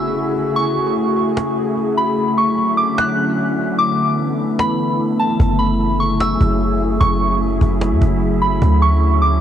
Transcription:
Already playing: C#3 A3 E4 F#4 G#4 E5 E6, impact
0.16 cajon slap
0.37 cajon slap
0.56 C#6, cajon slap
0.77 cajon slap
0.97 cajon slap
1.37 cajon slap
1.57 cajon slap
1.77 cajon slap
1.97 B5, cajon slap
2.17 D3 F#3 C#4 E4 F#4, cajon slap
2.38 C#6, cajon slap
2.58 cajon slap
2.77 D6
2.98 F#6, cajon slap
3.18 cajon slap
3.38 cajon slap
3.59 cajon slap
3.79 E3 B3 D4 A4 D6, cajon slap
3.99 cajon slap
4.19 cajon slap
4.59 B5, cajon slap
4.80 cajon slap
4.99 cajon slap
5.20 A5, cajon slap
5.25 cajon slap
5.30 cajon slap
5.35 cajon slap
5.40 F#1 C#3 F#3 A3 G#4 E5, cajon bass
5.59 B5, cajon slap
5.80 cajon slap
6.00 C#6
6.20 E6, cajon slap
6.41 F#1, cajon bass
6.60 cajon slap
6.81 cajon slap
7.01 F#1 C#6, cajon bass
7.21 cajon slap
7.41 cajon slap
7.61 F#1, cajon bass
7.81 cajon slap
7.91 F#2
8.02 F#1, cajon bass
8.22 cajon slap
8.42 B5, cajon slap
8.62 D2 D3 A3 C#4 F#4, cajon bass
8.82 C#6, cajon slap
9.02 cajon slap
9.22 D6

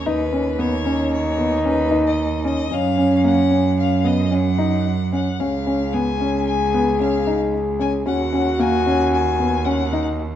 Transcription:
0.06 D#2 D#4 B4
0.33 C#4
0.59 B3 C#5
0.86 C#4
1.13 C#5
1.38 B3
1.65 C#4 B4
1.91 D#4
2.06 D#5
2.44 C#4 D#5
2.71 F#2 C#4 F5
2.98 C#4
3.24 A#3 F#5
3.51 C#4
3.79 F5
4.04 B3 D#5
4.31 C#4 F#5
4.58 D#4
5.13 C#4 F#5
5.39 C#2 C#4 G#4 F5
5.67 C#4
5.93 B3 G#5
6.21 C#4
6.46 G#5
6.74 B3
7.00 C#4 F5
7.27 D#4
7.79 C#4 G#5
8.06 D#2 C#4 F#4 F#5
8.33 C#4
8.59 A#3 G#5
8.86 C#4
9.13 G#5
9.40 B3
9.65 C#4 F#5
9.93 D#4

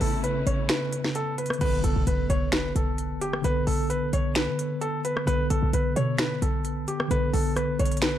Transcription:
Already playing: C#3 A3 B3 C#4 E4 A4
0.01 A1 A4, open hi-hat
0.24 B4, closed hi-hat
0.47 A1 C#5, closed hi-hat
0.69 B4, finger snap, snare, closed hi-hat
0.93 closed hi-hat
1.04 snare
1.15 A4, closed hi-hat
1.38 B4, closed hi-hat
1.46 closed hi-hat
1.50 cross-stick, closed hi-hat
1.59 B1 D3 B3 B4, closed hi-hat, crash, impact
1.63 A4
1.84 B1 A4, closed hi-hat
1.96 B1
2.07 B1 B4, closed hi-hat
2.30 B1 C#5, closed hi-hat
2.52 B4, finger snap, snare, closed hi-hat
2.76 B1 A4, closed hi-hat
2.98 closed hi-hat
3.21 G4, closed hi-hat
3.33 cross-stick
3.42 B1 D3 B3 B4, closed hi-hat
3.47 A4
3.67 B1 A4, open hi-hat
3.90 B4, closed hi-hat
4.13 B1 C#5, closed hi-hat
4.35 B4, finger snap, snare, closed hi-hat
4.48 D3
4.59 closed hi-hat
4.81 A4, closed hi-hat
5.05 B4, closed hi-hat
5.17 cross-stick
5.25 B1 D3 B3 B4, closed hi-hat
5.30 A4
5.50 B1 A4, closed hi-hat
5.63 B1
5.73 B1 B4, closed hi-hat
5.96 B2 C#5, closed hi-hat
6.18 B4, finger snap, snare, closed hi-hat
6.42 B1 A4, closed hi-hat
6.65 closed hi-hat
6.88 G4, closed hi-hat
7.00 cross-stick
7.08 B1 D3 B3 B4, closed hi-hat
7.13 A4
7.33 B1 A4, open hi-hat
7.56 B4, cross-stick, closed hi-hat
7.79 B1 C#5, closed hi-hat
7.85 closed hi-hat
7.92 closed hi-hat
7.97 closed hi-hat
8.02 B4, finger snap, snare, closed hi-hat

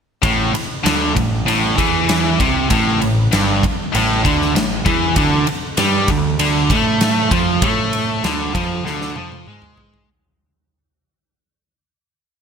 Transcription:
0.22 A1 A2, kick, ride
0.53 muted distorted electric guitar stroke, muted overdriven electric guitar stroke, muted picked electric bass stroke, ride
0.84 D2 D3, snare, ride
1.15 A1 A2, kick, ride
1.47 A1 A2, ride
1.78 E2 E3, kick, ride
2.09 snare, ride
2.40 C2 C3, kick, ride
2.70 A1 A2, kick, ride
3.01 A1 A2, ride
3.32 G1 G2, snare, ride
3.63 muted distorted electric guitar stroke, muted picked electric bass stroke, muted overdriven electric guitar stroke, kick, ride
3.93 A1 A2, ride
4.23 D2 D3, kick, ride
4.42 snare
4.55 A1 A2, snare, ride
4.85 E2 E3, kick, ride
5.16 D2 D3, kick, ride
5.47 muted distorted electric guitar stroke, muted picked electric bass stroke, muted overdriven electric guitar stroke, ride
5.77 G2 G3, snare, ride
6.08 D2 D3, kick, ride
6.39 D2 D3, ride
6.70 A2 A3, kick, ride
7.01 snare, ride
7.31 F2 F3, kick, ride
7.62 A2 A3, kick, ride
7.93 ride
8.24 D2 D3, snare, ride
8.55 F2 F3, kick, ride
8.86 D2 D3, snare
9.01 snare
9.16 F2 F3, high tom
9.32 high tom
9.47 G#2 G#3, mid tom
9.62 mid tom
9.77 floor tom
9.94 floor tom

